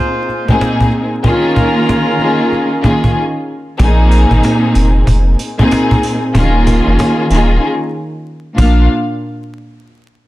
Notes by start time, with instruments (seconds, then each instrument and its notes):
Already playing: string section A#2 A#3 C4 D#4 G#4, horn section F4 G#4 C5
0.29 cajon slap
0.48 string section A#2 A#3 C4 D#4 G#4, cajon bass, cajon slap
0.61 cajon slap
0.81 cajon bass
0.90 cajon slap
1.23 string section D#3 A#3 C#4 F4 G#4, horn section C#4 F4 A#4, cajon bass
1.56 cajon bass
1.89 cajon slap
2.19 string section D#3 A#3 C#4 F4 G#4, cajon slap
2.52 cajon slap
2.83 string section D#3 A#3 C#4 F4 G#4, cajon bass
3.04 cajon bass
3.79 sub bass A#1, string section A#2 A#3 C4 D#4 G#4, cajon bass, sleigh bells
4.11 sleigh bells
4.31 sub bass G#1, cajon bass
4.43 cajon slap, sleigh bells
4.74 sub bass F1, cajon slap, sleigh bells
5.07 sub bass F1, cajon bass, cajon slap, sleigh bells
5.39 cajon slap, sleigh bells
5.59 string section A#2 A#3 C4 D#4 G#4, cajon bass, cajon slap
5.71 cajon slap, sleigh bells
5.91 cajon bass
6.03 sleigh bells
6.34 sub bass D#1, string section D#3 A#3 C#4 F4 G#4, cajon bass, sleigh bells
6.67 cajon bass, sleigh bells
6.87 sub bass F1
6.99 cajon slap, sleigh bells
7.29 sub bass D#1, string section D#3 A#3 C#4 F4 G#4, cajon slap, sleigh bells
8.58 sub bass A#1, string section A#2 A#3 D4 F4 F5, cajon bass, cajon slap, sleigh bells